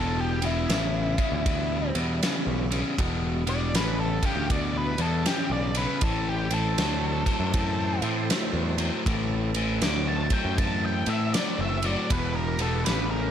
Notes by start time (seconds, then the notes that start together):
Already playing: E1 E2 B2 G#3 C4 F4 A4
0.19 G3 B3 E4 G4
0.42 E2 B2, ride
0.46 E4
0.69 A1 E2 C#3, snare, ride
1.18 E2 C#3, kick, ride
1.32 D2
1.46 E2 B2, kick, ride
1.95 E2 B2, ride
2.23 E2 C#3, snare, ride
2.47 B1
2.70 E2 C#3, ride
2.98 E1 E2 B2 G3 B3 E4, kick, ride
3.47 E2 B2 D5, ride
3.74 A1 E2 C#3 B4, snare, ride
4.00 A4
4.23 E2 C#3 G4, kick, ride
4.36 D2
4.50 E2 B2 D5, kick, ride
4.77 B4
4.98 E2 B2 A4, ride
5.26 E2 C#3 G4, snare, ride
5.50 B1 D5
5.75 E2 C#3 B4, ride
6.01 A1 A2 E3 C4 E4 A4 C5, kick, ride
6.29 G4
6.51 A2 E3 A4, ride
6.78 D2 A2 F#3, snare, ride
7.26 A2 F#3, kick, ride
7.40 F#2
7.54 A2 E3, kick, ride
8.02 A2 E3, ride
8.30 A2 F#3, snare, ride
8.53 E2
8.78 A2 F#3, ride
9.05 A1 A2 E3 C4 E4 A4, kick, ride
9.54 A2 E3, ride
9.82 D2 A2 F#3 D6, snare, ride
10.09 A5
10.30 A2 F#3 G5, kick, ride
10.45 F#2
10.58 A2 E3 A5, kick, ride
10.85 G5
11.06 A2 E3 E5, ride
11.34 A2 F#3 D5, snare, ride
11.59 F#1 E5
11.82 A2 F#3, ride
11.86 D5
12.09 E1 E2 B2 B3 E4 G4 B4, kick, ride
12.36 A#4
12.59 E2 B2 A4, ride
12.85 A1 E2 C#3 B4, snare, ride
13.11 A#4